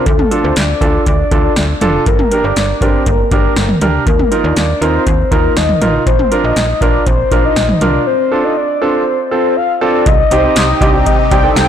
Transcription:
0.06 D2 A4, kick, closed hi-hat
0.19 mid tom
0.31 D4 F4 A4, closed hi-hat
0.44 D2 C5
0.56 D2 D5, snare, closed hi-hat
0.81 D2 D4 F4 A4, kick, closed hi-hat
1.06 D2 D5, kick, closed hi-hat
1.31 D2 D4 F4 A4, kick, closed hi-hat
1.56 D2, snare, closed hi-hat
1.81 F1 D4 F4 A4, closed hi-hat, mid tom
2.06 G1 A#4, kick, closed hi-hat
2.19 mid tom
2.31 D4 G4 A#4, closed hi-hat
2.44 G1 D5
2.56 G1, snare, closed hi-hat
2.81 G1 D4 G4 A#4 C5, kick, closed hi-hat
3.06 G1 A#4, kick, closed hi-hat
3.31 G1 D4 G4 A#4, kick, closed hi-hat
3.56 G1, snare, closed hi-hat
3.69 mid tom
3.81 D2 D4 G4 A#4, closed hi-hat, mid tom
4.07 D#2 A#4, kick, closed hi-hat
4.19 mid tom
4.31 D#4 F4 A#4, closed hi-hat
4.44 D#2 D5
4.56 D#2, snare, closed hi-hat
4.81 D#2 D#4 F4 A#4 C5, closed hi-hat
5.07 D#2, kick, closed hi-hat
5.31 D#2 D#4 F4 A#4, kick, closed hi-hat
5.57 D#2 D#5, snare, closed hi-hat
5.69 mid tom
5.81 A1 D#4 F4 A#4, closed hi-hat, mid tom
6.07 A#1 C5, kick, closed hi-hat
6.19 mid tom
6.31 D4 F4 A#4, closed hi-hat
6.44 A#1 D#5
6.56 A#1, snare, closed hi-hat
6.81 A#1 D4 F4 A#4 D5, kick, closed hi-hat
7.06 A#1 C5, kick, closed hi-hat
7.31 A#1 D4 F4 A#4, kick, closed hi-hat
7.44 D#5
7.56 A#1, snare, closed hi-hat
7.69 mid tom
7.81 C2 D4 F4 A#4 D5, closed hi-hat, mid tom
8.07 C5
8.31 D4 F4 A4
8.44 D#5
8.57 D5
8.81 D4 F4 A4 C5
9.31 C4 F4 A4 C5
9.56 F5
9.81 C4 F4 A4 D5
10.06 C2 C3 C4 D#4 G4 D#5, kick, closed hi-hat
10.31 C2 C4 D#4 G4 C5 D#5, closed hi-hat
10.44 C4 D#4 G4
10.56 C2, snare, closed hi-hat
10.81 C2 C4 D#4 G4 D5 D#5, kick, closed hi-hat
10.94 C4 D#4 G4
11.06 D#5, kick, closed hi-hat
11.31 C2 C4 D#4 G4 D5 G5, kick, closed hi-hat
11.44 C4 D#4 A4
11.56 C2 G5, snare, closed hi-hat

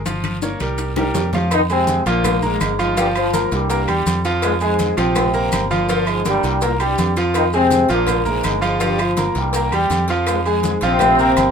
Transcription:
Already playing: G1
0.06 F3 F4 F5, high bongo, high conga, high timbale, long guiro, maracas
0.24 high bongo, high conga, high timbale, claves, maracas
0.42 A#3 A#4 C#5, high bongo, short guiro, maracas
0.60 C2 G3 G4 A#4, high conga, high timbale, short guiro, maracas
0.78 high bongo, high timbale, long guiro, maracas
0.96 G3 G4 A#4, high bongo, low conga, high timbale, claves, maracas
1.14 F2, low bongo, low conga, low timbale, short guiro, maracas
1.33 F3 F4 F5, low bongo, low conga, low timbale, short guiro, maracas
1.51 D#3 D#4, cowbell, high conga, low agogo, long guiro, claves, maracas
1.69 C3 G#3 C4 G#4 G#5, high conga, low agogo, maracas
1.87 cowbell, high conga, short guiro, maracas
2.06 A#1 A#2 F3 A#3 F4 F5, cowbell, high conga, low agogo, short guiro, maracas
2.24 cowbell, high conga, low conga, low agogo, long guiro, claves, maracas
2.42 G#2 G#3 A#3 A#4 A#5, high conga, low conga, maracas
2.61 G1 G#2 G#3, cowbell, high conga, low agogo, short guiro, claves, maracas
2.79 G#2 F3 G#3 F4 F5, low agogo, short guiro, maracas
2.97 G2 F3 G3 F4 F5, cowbell, high conga, long guiro, maracas
3.15 F3 F4, high conga, low agogo, claves, maracas
3.33 A#3 A#4 A#5, cowbell, high conga, low agogo, short guiro, maracas
3.52 C2 G2 G3, cowbell, high conga, short guiro, maracas
3.70 A#3 A#4 A#5, cowbell, low agogo, long guiro, maracas
3.88 E2 G3 G4 G5, high conga, low agogo, claves, maracas
4.06 F2, cowbell, high conga, low agogo, short guiro, maracas
4.25 F3 F4 F5, cowbell, short guiro, maracas
4.42 G#2 G#3, cowbell, high conga, low agogo, long guiro, claves, maracas
4.61 G#2 G#3 G#4 G#5, high conga, low agogo, maracas
4.79 cowbell, high conga, short guiro, maracas
4.97 A#1 C3 F3 C4 F4 F5, cowbell, high conga, low agogo, short guiro, maracas
5.16 cowbell, high conga, low conga, low agogo, long guiro, claves, maracas
5.34 A#3 A#4 A#5, high conga, maracas
5.52 G1, cowbell, high conga, low agogo, short guiro, claves, maracas
5.71 A#2 F3 A#3 F4 F5, high conga, low agogo, short guiro, maracas
5.89 A#2 F3 A#3 F4 F5, cowbell, high conga, long guiro, maracas
6.07 G#2 G#3, high conga, low agogo, claves, maracas
6.25 G2 G3 A#3 A#4 A#5, cowbell, high conga, low agogo, short guiro, maracas
6.43 C2, cowbell, high conga, short guiro, maracas
6.61 A#2 A#3 A#4 A#5, cowbell, high conga, low agogo, long guiro, maracas
6.80 G2 G3 G4 G5, high conga, low agogo, claves, maracas
6.98 F2, cowbell, high conga, low agogo, short guiro, maracas
7.16 F3 F4 F5, cowbell, short guiro, maracas
7.34 D#3 D#4, cowbell, high conga, low agogo, long guiro, claves, maracas
7.53 C3 G#3 C4 G#4 G#5, high conga, low agogo, maracas
7.71 cowbell, high conga, short guiro, maracas
7.89 A#1 A#2 F3 A#3 F4 F5, cowbell, high conga, low agogo, short guiro, maracas
8.07 cowbell, high conga, low conga, low agogo, long guiro, claves, maracas
8.25 G#2 G#3 A#3 A#4 A#5, high conga, low conga, maracas
8.43 G1 G#2 G#3, cowbell, high conga, low agogo, short guiro, claves, maracas
8.61 G#2 F3 G#3 F4 F5, low agogo, short guiro, maracas
8.80 G2 F3 G3 F4 F5, cowbell, high conga, long guiro, maracas
8.99 F3 F4, high conga, low agogo, claves, maracas
9.17 A#3 A#4 A#5, cowbell, high conga, low agogo, short guiro, maracas
9.35 C2 G2 G3, cowbell, high conga, short guiro, maracas
9.53 A#3 A#4 A#5, cowbell, high conga, low agogo, long guiro, maracas
9.72 E2 G3 G4 G5, high conga, low agogo, claves, maracas
9.90 F2, cowbell, high conga, low agogo, short guiro, maracas
10.08 F3 F4 F5, cowbell, short guiro, maracas
10.27 G#2 G#3, cowbell, high conga, low agogo, long guiro, claves, maracas
10.46 G#2 G#3 G#4 G#5, high conga, low agogo, maracas
10.63 cowbell, high conga, short guiro, maracas
10.81 A#1 C3 F3 C4 F4 F5, cowbell, high conga, low agogo, short guiro, maracas
10.99 cowbell, high conga, low conga, low agogo, long guiro, claves, maracas
11.19 A#3 A#4 A#5, high conga, maracas
11.36 G1, cowbell, high conga, low agogo, short guiro, claves, maracas

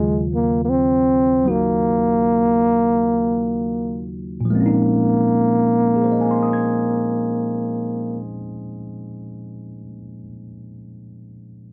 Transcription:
Already playing: D#2 C#3 D#3 F#3 G#3 F4
0.34 A#3
0.65 A#3
0.69 C4
1.45 F#3 A#3 D#4 F#4
1.51 A#3
4.41 A#2
4.45 F3
4.50 G#3 A#3
4.55 C4
4.60 C#4
4.66 D#4
5.96 G#4
6.04 C5
6.12 D#5
6.21 G#5
6.31 C6
6.43 D#6
6.53 G#6

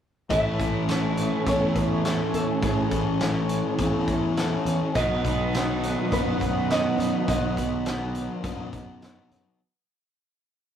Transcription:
0.30 A1 A2 E3 A3 C#4 E4 A4 E5 G#5 C#6, kick, closed hi-hat
0.60 A3 C#4 A4, kick, closed hi-hat
0.88 E3 A3 C#4 A4, snare, closed hi-hat
1.09 D#5
1.17 E3, closed hi-hat
1.46 E2 A2 E3 A3 C#4 A4 C#5, kick, closed hi-hat
1.76 C#4 B4, kick, closed hi-hat
2.05 E3 A3 C#4 A4, snare, closed hi-hat
2.33 E2 C#4 A4, closed hi-hat
2.62 A1 A2 E3 A3 C#4 A4, kick, closed hi-hat
2.66 G#4
2.91 A3 C#4 A4, kick, closed hi-hat
3.20 E3 A3 C#4 A4, snare, closed hi-hat
3.49 E3, closed hi-hat
3.78 E2 A2 E3 A3 C#4 A4, kick, closed hi-hat
4.07 C#4, kick, closed hi-hat
4.37 E3 A3 C#4 A4, snare, closed hi-hat
4.65 E2 C#4, closed hi-hat
4.94 B1 B2 D#3 F#3 B3 B4 D#5 F#5 D#6, kick, closed hi-hat
4.98 D#4 F#4
5.25 B3 D#4 F#4, kick, closed hi-hat
5.54 F#3 B3 D#4 F#4, snare, closed hi-hat
5.83 F#3, closed hi-hat
6.12 F#2 B2 F#3 B3 D#4 F#4 B4, kick, closed hi-hat
6.40 D#4, kick, closed hi-hat
6.70 F#3 B3 D#4 F#4 D#5, snare, closed hi-hat
6.98 F#2 D#4, closed hi-hat
7.28 B1 B2 F#3 B3 D#4 F#4 D#5, kick, closed hi-hat
7.57 B3 D#4 F#4, kick, closed hi-hat
7.86 F#3 B3 D#4 F#4, snare, closed hi-hat
8.15 F#3, closed hi-hat
8.43 F#2 B2 F#3 B3 D#4 F#4, kick, closed hi-hat
8.73 D#4, kick, closed hi-hat
9.02 F#3 B3 D#4 F#4, snare, closed hi-hat
9.31 F#2 D#4, closed hi-hat

